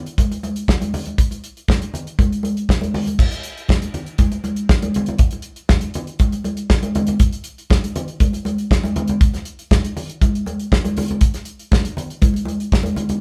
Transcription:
0.06 closed hi-hat soft
0.18 kick loud
0.18 closed hi-hat medium
0.18 muted conga soft
0.18 high conga medium
0.32 closed hi-hat soft
0.32 muted conga soft
0.43 closed hi-hat medium
0.43 high conga medium
0.56 closed hi-hat medium
0.68 kick loud
0.68 snare loud
0.68 muted conga soft
0.81 closed hi-hat medium
0.81 high conga medium
0.94 open hi-hat medium
0.94 high conga medium
0.94 low conga medium
1.06 closed hi-hat medium
1.06 high conga medium
1.18 kick loud
1.18 closed hi-hat medium
1.31 closed hi-hat soft
1.31 muted conga soft
1.44 closed hi-hat medium
1.57 closed hi-hat soft
1.68 kick loud
1.68 snare loud
1.68 muted conga soft
1.68 high conga medium
1.82 closed hi-hat medium
1.82 muted conga soft
1.94 closed hi-hat medium
1.94 low conga medium
2.07 closed hi-hat soft
2.19 kick loud
2.19 closed hi-hat medium
2.19 muted conga soft
2.19 high conga medium
2.32 closed hi-hat soft
2.43 closed hi-hat medium
2.43 high conga medium
2.57 closed hi-hat soft
2.69 kick loud
2.69 snare loud
2.81 closed hi-hat medium
2.81 muted conga soft
2.81 high conga medium
2.94 open hi-hat medium
2.94 high conga medium
2.94 low conga medium
3.07 closed hi-hat medium
3.07 high conga medium
3.19 kick loud
3.19 crash loud
3.19 muted conga soft
3.31 closed hi-hat medium
3.31 muted conga soft
3.43 closed hi-hat medium
3.57 closed hi-hat soft
3.69 kick loud
3.69 snare loud
3.69 muted conga soft
3.69 high conga medium
3.82 closed hi-hat medium
3.82 muted conga soft
3.94 closed hi-hat medium
3.94 low conga medium
4.06 closed hi-hat soft
4.18 kick loud
4.18 closed hi-hat medium
4.18 muted conga soft
4.18 high conga medium
4.32 closed hi-hat soft
4.32 muted conga soft
4.44 closed hi-hat medium
4.44 high conga medium
4.56 closed hi-hat medium
4.69 kick loud
4.69 snare loud
4.69 muted conga soft
4.82 closed hi-hat medium
4.82 high conga medium
4.94 closed hi-hat medium
4.94 high conga medium
4.94 low conga medium
5.06 closed hi-hat medium
5.06 high conga medium
5.06 low conga medium
5.18 kick loud
5.18 closed hi-hat loud
5.31 closed hi-hat medium
5.31 muted conga soft
5.42 closed hi-hat medium
5.56 closed hi-hat soft
5.69 kick loud
5.69 snare loud
5.69 high conga medium
5.81 closed hi-hat medium
5.81 muted conga soft
5.94 closed hi-hat medium
5.94 low conga medium
6.07 closed hi-hat soft
6.19 kick loud
6.19 closed hi-hat medium
6.19 high conga medium
6.32 closed hi-hat soft
6.32 muted conga soft
6.44 closed hi-hat medium
6.44 high conga medium
6.57 closed hi-hat medium
6.70 kick loud
6.70 snare loud
6.83 closed hi-hat medium
6.83 muted conga soft
6.83 high conga medium
6.95 closed hi-hat medium
6.95 high conga medium
6.95 low conga medium
7.07 closed hi-hat medium
7.07 high conga medium
7.07 low conga medium
7.19 kick loud
7.19 closed hi-hat medium
7.19 muted conga soft
7.33 closed hi-hat medium
7.44 closed hi-hat medium
7.58 closed hi-hat soft
7.70 kick loud
7.70 snare loud
7.70 muted conga soft
7.70 high conga medium
7.84 closed hi-hat medium
7.84 muted conga soft
7.96 closed hi-hat medium
7.96 low conga loud
8.08 closed hi-hat soft
8.20 kick loud
8.20 closed hi-hat medium
8.20 high conga medium
8.33 closed hi-hat soft
8.33 muted conga soft
8.45 closed hi-hat medium
8.45 high conga medium
8.58 closed hi-hat soft
8.71 kick loud
8.71 snare loud
8.71 muted conga soft
8.83 closed hi-hat medium
8.83 muted conga soft
8.83 high conga medium
8.96 closed hi-hat medium
8.96 high conga loud
8.96 low conga medium
9.08 closed hi-hat medium
9.08 high conga medium
9.08 low conga medium
9.21 kick loud
9.21 closed hi-hat medium
9.34 snare soft
9.34 closed hi-hat soft
9.34 muted conga soft
9.45 closed hi-hat medium
9.59 closed hi-hat soft
9.71 kick loud
9.71 snare loud
9.71 muted conga soft
9.71 high conga medium
9.84 closed hi-hat medium
9.84 muted conga soft
9.97 open hi-hat medium
9.97 low conga medium
10.10 closed hi-hat medium
10.22 kick loud
10.22 closed hi-hat medium
10.22 muted conga soft
10.22 high conga medium
10.35 closed hi-hat soft
10.46 closed hi-hat medium
10.46 high conga medium
10.60 closed hi-hat soft
10.72 kick loud
10.72 snare loud
10.85 closed hi-hat medium
10.85 high conga medium
10.97 open hi-hat medium
10.97 high conga medium
10.97 low conga medium
11.08 closed hi-hat medium
11.08 high conga medium
11.08 low conga medium
11.21 kick loud
11.21 closed hi-hat loud
11.34 snare soft
11.34 closed hi-hat soft
11.45 closed hi-hat medium
11.59 closed hi-hat soft
11.71 kick loud
11.71 snare loud
11.71 muted conga soft
11.71 high conga medium
11.85 closed hi-hat medium
11.85 muted conga soft
11.97 closed hi-hat medium
11.97 low conga medium
12.10 closed hi-hat soft
12.22 kick loud
12.22 closed hi-hat medium
12.22 muted conga soft
12.22 high conga medium
12.34 closed hi-hat soft
12.34 muted conga soft
12.45 closed hi-hat medium
12.45 high conga medium
12.60 closed hi-hat soft
12.72 kick loud
12.72 snare loud
12.72 muted conga soft
12.83 closed hi-hat medium
12.83 muted conga soft
12.83 high conga medium
12.96 closed hi-hat medium
12.96 high conga medium
12.96 low conga medium
13.09 closed hi-hat medium
13.09 high conga medium
13.09 low conga medium

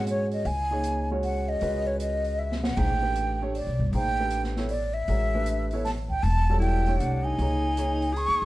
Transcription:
0.00 0.42 G#2 medium
0.00 0.44 G#3 medium
0.00 0.44 C#4 medium
0.00 0.44 F#4 medium
0.00 0.44 C#5 medium
0.07 0.32 C#5 medium
0.07 closed hi-hat soft
0.31 0.47 D#5 medium
0.31 open hi-hat soft
0.45 1.57 C#2 medium
0.45 1.09 G#5 medium
0.45 open hi-hat soft
0.71 1.07 A#3 medium
0.71 1.07 D#4 soft
0.71 1.08 G#4 soft
0.71 1.08 C#5 medium
0.84 closed hi-hat soft
1.11 1.60 G#3 medium
1.11 1.60 C#4 soft
1.11 1.60 F#4 medium
1.11 1.60 C#5 medium
1.23 1.50 F#5 medium
1.23 open hi-hat soft
1.49 1.88 D#5 medium
1.61 2.73 C#2 medium
1.61 2.69 G#3 medium
1.61 2.69 C#4 soft
1.61 2.69 F#4 soft
1.61 2.69 B4 medium
1.61 open hi-hat soft
1.87 2.00 C#5 medium
2.00 2.40 D#5 medium
2.00 closed hi-hat soft
2.24 open hi-hat soft
2.39 2.65 E5 medium
2.52 snare soft
2.63 2.79 F#5 medium
2.63 snare medium
2.77 3.63 A1 medium
2.77 2.99 A#3 soft
2.77 3.00 D#4 soft
2.77 3.00 G#4 soft
2.77 3.00 C5 soft
2.77 3.40 G5 medium
2.77 kick medium
2.77 ride medium
3.02 3.35 A3 soft
3.02 3.35 D4 soft
3.02 3.36 G4 soft
3.02 3.36 B4 soft
3.15 closed hi-hat soft
3.42 3.54 A3 medium
3.42 3.54 D4 soft
3.42 3.54 G4 soft
3.42 3.54 C#5 medium
3.55 3.91 D5 medium
3.55 open hi-hat soft
3.67 3.79 B1 medium
3.79 3.92 G1 medium
3.79 kick medium
3.93 5.04 A1 medium
3.93 4.16 A#3 medium
3.93 4.16 D#4 soft
3.93 4.16 G#4 soft
3.93 4.16 C5 medium
3.93 4.43 G5 medium
3.93 open hi-hat soft
4.20 4.52 A3 soft
4.20 4.52 D4 soft
4.20 4.52 G4 soft
4.20 4.53 B4 medium
4.31 closed hi-hat soft
4.44 snare soft
4.56 4.69 B3 medium
4.56 4.69 E4 medium
4.56 4.69 A4 soft
4.56 4.69 C#5 medium
4.56 snare soft
4.69 4.95 D5 medium
4.69 open hi-hat soft
4.94 5.71 E5 medium
5.08 6.20 A1 medium
5.08 5.31 G#3 medium
5.08 5.31 C#4 soft
5.08 5.31 F#4 soft
5.08 5.31 A#4 medium
5.08 open hi-hat soft
5.35 5.67 A3 medium
5.35 5.67 D4 soft
5.35 5.68 G4 soft
5.35 5.68 B4 medium
5.46 closed hi-hat soft
5.71 5.85 B3 medium
5.71 5.85 E4 medium
5.71 5.85 A4 medium
5.71 5.85 C#5 medium
5.71 open hi-hat soft
5.85 5.91 A5 medium
5.85 snare soft
5.85 open hi-hat soft
6.10 6.24 G5 medium
6.10 kick soft
6.23 6.97 E1 medium
6.23 6.61 A5 medium
6.23 open hi-hat soft
6.50 6.85 G3 medium
6.50 6.85 C#4 medium
6.50 6.85 F#4 medium
6.50 6.86 A4 medium
6.59 6.99 E4 medium
6.59 7.01 G5 medium
6.59 closed hi-hat soft
6.86 7.37 A3 medium
6.86 7.37 D4 medium
6.86 7.37 G4 soft
6.86 7.37 C#5 medium
6.86 open hi-hat soft
6.97 7.36 C2 medium
6.97 7.24 D4 medium
6.97 7.26 F#5 medium
6.97 closed hi-hat soft
7.23 8.15 D#4 medium
7.23 8.19 G#5 medium
7.38 8.25 C#2 medium
7.38 7.63 A#3 soft
7.38 7.63 D#4 soft
7.38 7.63 G#4 soft
7.38 7.63 C#5 medium
7.38 open hi-hat soft
7.77 8.01 A#3 medium
7.77 8.00 D#4 medium
7.77 8.00 G#4 soft
7.77 8.01 C#5 medium
7.77 closed hi-hat soft
8.02 open hi-hat soft
8.13 8.45 G#4 medium
8.13 8.45 C#6 medium
8.13 open hi-hat soft
8.28 8.41 D#2 medium
8.42 8.45 C2 medium

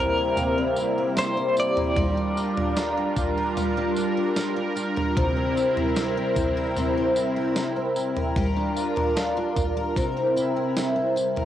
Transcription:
0.00 0.36 C3 loud
0.00 0.67 G3 medium
0.00 11.45 G3 medium
0.00 1.93 A#3 medium
0.00 0.56 C4 medium
0.00 1.94 C4 medium
0.00 0.76 E4 medium
0.00 1.93 E4 medium
0.00 1.18 A#4 loud
0.00 0.30 G5 soft
0.18 0.38 A#4 medium
0.37 2.05 C3 medium
0.37 0.97 A#4 medium
0.37 floor tom medium
0.37 tambourine medium
0.58 1.36 C4 medium
0.76 1.16 E4 medium
0.76 tambourine medium
0.98 1.77 A#4 medium
1.16 1.56 E4 medium
1.16 1.55 C5 loud
1.16 2.28 C6 medium
1.16 snare loud
1.16 tambourine loud
1.37 2.05 C4 medium
1.57 2.05 E4 medium
1.57 3.14 D5 loud
1.57 tambourine medium
1.77 1.97 A#4 medium
1.77 floor tom medium
1.96 3.57 G3 medium
1.96 5.13 D4 medium
1.96 5.13 F4 medium
1.96 8.32 A#4 medium
1.96 2.57 A#4 medium
1.96 kick loud
1.96 floor tom loud
2.17 2.96 D4 medium
2.37 2.76 F4 medium
2.37 tambourine medium
2.57 3.37 A#4 medium
2.57 floor tom medium
2.75 3.16 F4 medium
2.75 3.88 A#5 medium
2.75 snare loud
2.75 tambourine medium
2.97 3.76 D4 medium
3.16 3.96 F4 medium
3.16 kick loud
3.16 floor tom medium
3.16 tambourine medium
3.37 3.57 A#4 medium
3.57 7.07 G3 medium
3.57 4.17 A#4 medium
3.57 floor tom medium
3.57 tambourine medium
3.77 4.55 D4 medium
3.96 4.36 F4 medium
3.96 tambourine medium
4.17 4.96 A#4 medium
4.36 4.75 F4 medium
4.36 snare loud
4.36 tambourine medium
4.56 5.24 D4 medium
4.76 5.24 F4 medium
4.76 tambourine medium
4.96 5.17 A#4 medium
4.96 floor tom medium
5.16 6.77 C3 loud
5.16 8.33 C4 medium
5.16 8.34 E4 medium
5.16 5.77 A#4 medium
5.16 kick loud
5.16 floor tom loud
5.37 6.16 C4 medium
5.57 5.96 E4 medium
5.57 tambourine medium
5.77 6.57 A#4 medium
5.77 floor tom medium
5.96 6.35 E4 medium
5.96 snare loud
5.96 tambourine medium
6.17 6.96 C4 medium
6.36 7.16 E4 medium
6.36 kick loud
6.36 floor tom medium
6.36 tambourine medium
6.57 6.78 A#4 medium
6.77 8.45 C3 medium
6.77 7.36 A#4 medium
6.77 floor tom medium
6.77 tambourine medium
6.97 7.75 C4 medium
7.16 7.55 E4 medium
7.16 tambourine medium
7.36 8.16 A#4 medium
7.56 7.95 E4 medium
7.56 snare loud
7.56 tambourine loud
7.76 8.44 C4 medium
7.96 8.45 E4 medium
7.96 8.72 G5 medium
7.96 tambourine medium
8.16 8.37 A#4 medium
8.16 floor tom medium
8.36 11.45 G3 medium
8.36 9.95 D4 medium
8.36 9.95 F4 medium
8.36 11.45 A#4 medium
8.36 8.96 A#4 medium
8.36 kick loud
8.36 floor tom loud
8.57 9.35 D4 medium
8.77 9.15 F4 medium
8.77 tambourine medium
8.96 9.76 A#4 medium
8.96 floor tom medium
9.16 9.55 F4 medium
9.16 snare loud
9.16 tambourine medium
9.37 10.05 D4 medium
9.56 10.04 F4 medium
9.56 kick medium
9.56 floor tom medium
9.56 tambourine medium
9.77 9.97 A#4 medium
9.96 11.45 C3 loud
9.96 11.45 C4 medium
9.96 11.45 E4 medium
9.96 10.56 A#4 medium
9.96 kick medium
9.96 tambourine medium
10.17 10.95 C4 medium
10.36 10.76 E4 medium
10.36 tambourine medium
10.56 11.36 A#4 medium
10.76 11.16 E4 medium
10.76 11.45 E5 medium
10.76 snare loud
10.76 tambourine loud
10.96 11.45 C4 medium
11.02 11.45 G5 soft
11.16 11.45 E4 medium
11.16 tambourine medium
11.36 11.45 A#4 medium
11.36 floor tom medium

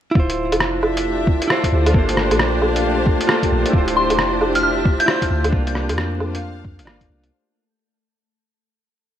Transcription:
0.11 1.46 E4 medium
0.11 7.33 A5 medium
0.11 kick loud
0.15 0.53 D1 medium
0.15 7.33 A3 medium
0.15 1.48 F4 medium
0.20 1.50 C5 medium
0.30 closed hi-hat soft
0.52 1.40 F1 medium
0.52 7.32 D4 medium
0.52 closed hi-hat medium
0.52 low woodblock medium
0.60 cross-stick loud
0.78 7.32 C5 medium
0.78 1.95 E5 medium
0.83 low woodblock medium
0.95 7.32 G4 medium
0.95 closed hi-hat medium
1.27 kick loud
1.42 closed hi-hat medium
1.48 1.90 E4 medium
1.48 1.90 F4 medium
1.48 cross-stick loud
1.52 1.94 C5 loud
1.64 kick medium
1.64 closed hi-hat soft
1.72 1.93 D2 medium
1.86 closed hi-hat medium
1.86 low woodblock medium
1.91 2.32 G1 medium
1.91 3.25 F4 medium
1.91 3.26 A4 medium
1.91 kick loud
1.96 3.28 A#3 medium
1.96 3.29 C5 medium
2.09 closed hi-hat soft
2.17 cross-stick medium
2.31 3.19 A#1 loud
2.31 closed hi-hat medium
2.31 low woodblock medium
2.40 cross-stick loud
2.57 3.74 F5 medium
2.62 low woodblock medium
2.76 closed hi-hat medium
3.06 kick loud
3.21 closed hi-hat medium
3.27 3.72 A#3 medium
3.27 3.70 F4 medium
3.27 3.72 A4 medium
3.27 cross-stick loud
3.31 3.73 C5 loud
3.43 kick medium
3.43 closed hi-hat soft
3.52 3.65 A#1 medium
3.66 closed hi-hat medium
3.70 4.12 D1 medium
3.70 5.04 E4 medium
3.70 5.06 F4 medium
3.70 kick loud
3.78 5.08 C5 medium
3.88 closed hi-hat soft
3.97 4.20 C6 loud
4.10 4.98 F1 loud
4.10 closed hi-hat medium
4.10 low woodblock soft
4.19 cross-stick loud
4.41 low woodblock medium
4.55 5.53 E5 medium
4.55 4.61 F6 medium
4.55 closed hi-hat medium
4.63 4.72 F6 medium
4.85 kick loud
5.00 5.45 G6 medium
5.00 closed hi-hat medium
5.06 5.48 E4 medium
5.06 5.51 F4 medium
5.06 cross-stick loud
5.10 5.52 C5 loud
5.22 kick medium
5.22 closed hi-hat soft
5.30 5.51 D2 loud
5.44 closed hi-hat medium
5.44 low woodblock medium
5.49 6.83 D4 medium
5.49 6.85 F4 medium
5.49 kick loud
5.57 6.87 A#3 loud
5.67 closed hi-hat soft
5.75 cross-stick medium
5.89 6.64 F2 loud
5.89 closed hi-hat medium
5.89 low woodblock soft
5.98 cross-stick loud
6.20 low woodblock medium
6.31 7.32 F5 medium
6.35 closed hi-hat medium
6.65 6.80 F2 medium
6.65 kick loud
6.79 7.08 G1 medium
6.79 closed hi-hat medium
6.85 7.31 A#3 loud
6.85 7.29 D4 medium
6.85 7.30 F4 medium
6.85 cross-stick loud
7.01 kick medium
7.01 closed hi-hat soft
7.10 7.31 C2 medium
7.24 closed hi-hat medium

